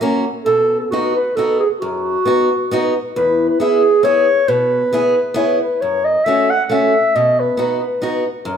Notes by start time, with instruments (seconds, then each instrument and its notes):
0.01 steel-string acoustic guitar A#3 C#4 F#4
0.45 steel-string acoustic guitar B2, clarinet A4
0.80 clarinet A4
0.90 steel-string acoustic guitar B3 D#4 F#4, clarinet F#4
1.15 clarinet B4
1.36 steel-string acoustic guitar B3 D#4 F#4, clarinet A4
1.59 clarinet G#4
1.80 steel-string acoustic guitar F#2, clarinet F#4
2.25 steel-string acoustic guitar B3 D#4 F#4
2.71 steel-string acoustic guitar B3 D#4 F#4
3.15 steel-string acoustic guitar E2, clarinet B4
3.49 clarinet B4
3.60 steel-string acoustic guitar B3 E4 G#4, clarinet G#4
4.03 steel-string acoustic guitar B3 E4 G#4, clarinet C#5
4.48 steel-string acoustic guitar B2, clarinet B4
4.93 steel-string acoustic guitar B3 E4 G#4
5.34 steel-string acoustic guitar B3 E4 G#4, clarinet C#5
5.61 clarinet B4
5.81 steel-string acoustic guitar F#2, clarinet C#5
6.05 clarinet D#5
6.24 steel-string acoustic guitar A3 C#4 F#4, clarinet E5
6.50 clarinet F#5
6.64 clarinet F#5
6.70 steel-string acoustic guitar A3 C#4 F#4, clarinet E5
7.15 steel-string acoustic guitar B2, clarinet D#5
7.40 clarinet B4
7.57 steel-string acoustic guitar B3 D#4 F#4, clarinet B4
8.02 steel-string acoustic guitar B3 D#4 F#4
8.45 steel-string acoustic guitar F#2